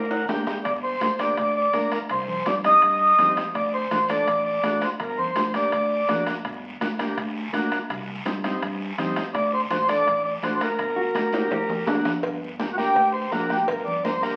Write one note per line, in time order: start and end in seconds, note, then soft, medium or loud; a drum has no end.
0.00 0.22 D2 medium
0.00 0.25 A#4 medium
0.10 0.27 F#5 medium
0.10 high timbale medium
0.28 0.43 D2 medium
0.28 0.54 A#3 medium
0.28 0.54 D4 medium
0.28 0.54 G4 medium
0.28 0.46 G5 medium
0.28 bombo rim medium
0.28 high conga medium
0.28 low timbale medium
0.28 short guiro medium
0.47 0.64 G5 medium
0.47 bombo rim medium
0.47 high conga medium
0.47 low timbale medium
0.47 short guiro medium
0.65 0.94 G1 medium
0.65 0.73 D5 medium
0.65 bombo low medium
0.65 bombo rim medium
0.65 high timbale medium
0.65 long guiro medium
0.83 1.00 C5 medium
0.83 high conga soft
1.01 1.31 D2 medium
1.01 1.07 A#3 medium
1.01 1.07 D4 medium
1.01 1.08 G4 medium
1.01 1.20 C5 medium
1.01 bombo rim medium
1.01 high conga loud
1.01 high timbale medium
1.01 short guiro medium
1.19 1.38 A#3 medium
1.19 1.38 D4 medium
1.19 1.39 G4 medium
1.19 1.36 D5 medium
1.19 bombo rim medium
1.19 high conga medium
1.19 high timbale medium
1.19 short guiro medium
1.37 1.67 D2 medium
1.37 1.54 D5 loud
1.37 bombo low medium
1.37 bombo rim medium
1.37 high conga soft
1.37 high timbale medium
1.37 long guiro medium
1.57 1.90 D5 loud
1.73 1.89 D2 medium
1.73 1.99 A#3 medium
1.73 1.99 D4 medium
1.73 1.99 A#4 medium
1.73 bombo rim medium
1.73 high conga medium
1.73 high timbale medium
1.73 low timbale medium
1.73 short guiro medium
1.91 2.01 A#4 medium
1.91 bombo rim medium
1.91 high conga medium
1.91 high timbale medium
1.91 short guiro medium
2.09 2.39 C2 medium
2.09 2.28 C5 medium
2.09 bombo low medium
2.09 bombo rim medium
2.09 high timbale medium
2.09 long guiro medium
2.28 2.47 C5 medium
2.28 high conga soft
2.28 low conga medium
2.46 2.75 G2 medium
2.46 2.52 C4 medium
2.46 2.52 D#4 medium
2.46 2.53 G4 medium
2.46 2.55 D5 loud
2.46 bombo rim medium
2.46 high conga loud
2.46 high timbale medium
2.46 short guiro medium
2.64 2.83 C4 medium
2.64 2.83 D#4 soft
2.64 2.83 G4 medium
2.64 3.33 D#5 loud
2.64 bombo rim medium
2.64 high conga medium
2.64 high timbale medium
2.64 short guiro medium
2.82 3.12 G2 medium
2.82 bombo low medium
2.82 bombo rim medium
2.82 high conga soft
2.82 high timbale medium
2.82 long guiro medium
3.18 3.33 G2 medium
3.18 3.44 C4 medium
3.18 3.44 D#4 medium
3.18 3.44 G4 medium
3.18 bombo rim medium
3.18 high conga medium
3.18 low conga medium
3.18 high timbale medium
3.18 low timbale medium
3.18 short guiro medium
3.37 bombo rim medium
3.37 high conga medium
3.37 high timbale medium
3.37 short guiro medium
3.54 3.84 D2 loud
3.54 3.72 D5 medium
3.54 bombo low medium
3.54 bombo rim medium
3.54 high timbale medium
3.54 long guiro medium
3.73 4.11 C5 medium
3.73 high conga soft
3.91 4.20 A1 medium
3.91 3.97 A3 medium
3.91 3.98 D4 medium
3.91 3.98 F#4 medium
3.91 bombo rim medium
3.91 high conga loud
3.91 high timbale medium
3.91 short guiro medium
4.09 4.28 A3 medium
4.09 4.28 D4 medium
4.09 4.29 A4 medium
4.09 4.43 D5 loud
4.09 bombo rim medium
4.09 high conga medium
4.09 high timbale medium
4.09 short guiro medium
4.27 4.57 A1 medium
4.27 bombo low medium
4.27 bombo rim medium
4.27 high conga soft
4.27 high timbale medium
4.27 long guiro medium
4.45 4.83 D5 medium
4.63 4.78 A1 medium
4.63 4.89 A3 medium
4.63 4.89 D4 medium
4.63 4.89 F#4 medium
4.63 bombo rim medium
4.63 high conga medium
4.63 high timbale medium
4.63 low timbale medium
4.63 short guiro medium
4.81 4.90 C5 medium
4.81 bombo rim medium
4.81 high conga medium
4.81 high timbale medium
4.81 short guiro medium
4.99 5.29 G1 loud
4.99 5.19 A#4 medium
4.99 bombo low medium
4.99 bombo rim medium
4.99 high timbale medium
4.99 long guiro medium
5.18 5.52 C5 medium
5.18 high conga soft
5.18 low conga medium
5.36 5.65 D2 loud
5.36 5.42 A#3 medium
5.36 5.42 D4 medium
5.36 5.42 G4 medium
5.36 bombo rim medium
5.36 high conga loud
5.36 high timbale medium
5.36 short guiro medium
5.54 5.73 A#3 medium
5.54 5.73 D4 medium
5.54 5.73 G4 medium
5.54 6.23 D5 loud
5.54 bombo rim medium
5.54 high conga medium
5.54 high timbale medium
5.54 short guiro medium
5.72 6.01 D2 medium
5.72 bombo low medium
5.72 bombo rim medium
5.72 high conga soft
5.72 high timbale medium
5.72 long guiro medium
6.09 6.23 D2 medium
6.09 6.34 A#3 medium
6.09 6.34 D4 medium
6.09 6.34 F#4 medium
6.09 bombo low medium
6.09 bombo rim medium
6.09 high conga medium
6.09 low conga medium
6.09 high timbale medium
6.09 low timbale medium
6.09 short guiro medium
6.27 bombo rim medium
6.27 high conga medium
6.27 high timbale medium
6.27 short guiro medium
6.45 6.74 G1 loud
6.45 bombo low medium
6.45 bombo rim medium
6.45 high timbale medium
6.45 long guiro medium
6.64 high conga soft
6.81 7.10 D2 loud
6.81 6.87 A#3 medium
6.81 6.87 D4 medium
6.81 6.88 F#4 medium
6.81 bombo rim medium
6.81 high conga loud
6.81 high timbale medium
6.81 short guiro medium
6.99 7.18 A#3 medium
6.99 7.18 D4 medium
6.99 7.19 G4 medium
6.99 bombo rim medium
6.99 high conga medium
6.99 high timbale medium
6.99 short guiro medium
7.17 7.46 D2 loud
7.17 bombo low medium
7.17 bombo rim medium
7.17 high conga soft
7.17 high timbale medium
7.17 long guiro medium
7.53 7.68 D2 medium
7.53 7.78 A#3 medium
7.53 7.79 D4 medium
7.53 7.79 F#4 loud
7.53 bombo rim medium
7.53 high conga medium
7.53 high timbale medium
7.53 short guiro medium
7.72 bombo rim medium
7.72 high conga medium
7.72 high timbale medium
7.72 short guiro medium
7.90 8.19 C2 loud
7.90 bombo low medium
7.90 bombo rim medium
7.90 high timbale medium
7.90 long guiro medium
8.09 high conga soft
8.25 8.55 G2 medium
8.25 8.32 C4 medium
8.25 8.32 D#4 medium
8.25 8.32 G4 medium
8.25 bombo rim medium
8.25 high conga loud
8.25 high timbale medium
8.25 short guiro medium
8.44 8.63 C4 medium
8.44 8.63 D#4 medium
8.44 8.63 G4 medium
8.44 bombo rim medium
8.44 high conga medium
8.44 high timbale medium
8.44 short guiro medium
8.62 8.91 G2 medium
8.62 bombo low medium
8.62 bombo rim medium
8.62 high conga soft
8.62 high timbale medium
8.62 long guiro medium
8.98 9.13 G2 medium
8.98 9.23 C4 medium
8.98 9.24 D#4 medium
8.98 9.24 G4 medium
8.98 bombo low medium
8.98 bombo rim medium
8.98 high conga medium
8.98 low conga medium
8.98 high timbale medium
8.98 short guiro medium
9.16 bombo rim medium
9.16 high conga medium
9.16 high timbale medium
9.16 short guiro medium
9.34 9.63 D2 loud
9.34 9.51 D5 medium
9.34 bombo low medium
9.34 bombo rim medium
9.34 high timbale medium
9.34 long guiro medium
9.53 9.61 C5 medium
9.53 high conga soft
9.70 10.00 A1 medium
9.70 9.77 A3 medium
9.70 9.77 D4 medium
9.70 9.77 F#4 medium
9.70 9.87 C5 loud
9.70 bombo rim medium
9.70 high conga loud
9.70 high timbale medium
9.70 short guiro medium
9.89 10.08 A3 medium
9.89 10.08 D4 medium
9.89 10.08 A4 medium
9.89 10.22 D5 loud
9.89 bombo rim medium
9.89 high conga medium
9.89 high timbale medium
9.89 short guiro medium
10.07 10.36 A1 medium
10.07 bombo low medium
10.07 bombo rim medium
10.07 high conga soft
10.07 high timbale medium
10.07 long guiro medium
10.25 10.33 D5 medium
10.42 10.57 A1 medium
10.42 10.68 A3 medium
10.42 10.68 D4 medium
10.42 10.69 F#4 medium
10.42 10.54 C5 medium
10.42 bombo rim medium
10.42 high conga medium
10.42 high timbale medium
10.42 short guiro medium
10.55 10.61 C5 medium
10.61 11.84 A#4 medium
10.61 bombo rim medium
10.61 high conga medium
10.61 high timbale medium
10.61 short guiro medium
10.78 11.08 G1 medium
10.78 bombo low medium
10.78 bombo rim medium
10.78 high timbale medium
10.78 long guiro medium
10.96 11.50 F#4 medium
10.96 high conga soft
11.15 11.44 D2 medium
11.15 11.21 A#3 medium
11.15 11.21 D4 medium
11.15 11.22 G4 medium
11.15 bombo rim medium
11.15 high conga loud
11.15 high timbale medium
11.15 short guiro medium
11.33 11.52 A#3 medium
11.33 11.52 D4 medium
11.33 11.52 G4 medium
11.33 bombo rim medium
11.33 high conga medium
11.33 high timbale medium
11.33 short guiro medium
11.51 11.80 D2 medium
11.51 11.68 G4 loud
11.51 bombo low medium
11.51 bombo rim medium
11.51 low conga medium
11.51 high timbale medium
11.51 long guiro medium
11.69 11.88 G4 medium
11.69 low conga medium
11.69 low timbale medium
11.86 12.02 D2 medium
11.86 12.12 A#3 medium
11.86 12.12 D4 medium
11.86 12.21 D4 medium
11.86 12.13 F#4 medium
11.86 bombo rim medium
11.86 low conga medium
11.86 low timbale medium
11.86 short guiro medium
12.05 bombo rim medium
12.05 low conga medium
12.05 low timbale medium
12.05 short guiro medium
12.23 12.81 G1 loud
12.23 bombo low medium
12.23 bombo rim medium
12.23 cowbell medium
12.23 long guiro medium
12.42 high conga soft
12.59 12.66 A#3 medium
12.59 12.66 D4 medium
12.59 12.66 G4 medium
12.59 bombo rim medium
12.59 high conga loud
12.59 short guiro medium
12.73 12.76 F#4 medium
12.78 12.97 A#3 medium
12.78 12.97 D4 medium
12.78 13.13 G4 loud
12.78 12.97 A#4 medium
12.78 bombo rim medium
12.78 high conga medium
12.78 short guiro medium
12.96 13.25 D2 loud
12.96 bombo low medium
12.96 bombo rim medium
12.96 cowbell medium
12.96 high conga soft
12.96 long guiro medium
13.13 13.31 C5 medium
13.31 13.61 A#1 medium
13.31 13.57 A#3 medium
13.31 13.57 D4 medium
13.31 13.58 F#4 medium
13.31 13.49 A#4 medium
13.31 bombo rim medium
13.31 high conga medium
13.31 low timbale medium
13.31 short guiro medium
13.49 13.67 G4 medium
13.49 bombo rim medium
13.49 high conga medium
13.49 short guiro medium
13.67 14.26 G1 loud
13.67 13.85 A#4 medium
13.67 bombo low medium
13.67 bombo rim medium
13.67 cowbell loud
13.67 long guiro medium
13.85 14.03 D5 medium
13.85 high conga soft
13.85 low conga medium
14.04 14.11 A#3 medium
14.04 14.11 D4 medium
14.04 14.11 A#4 medium
14.04 14.22 C5 medium
14.04 bombo rim medium
14.04 high conga loud
14.04 short guiro medium
14.22 14.36 A#3 medium
14.22 14.36 D4 medium
14.22 14.36 G4 medium
14.22 14.36 A#4 loud
14.22 bombo rim medium
14.22 short guiro medium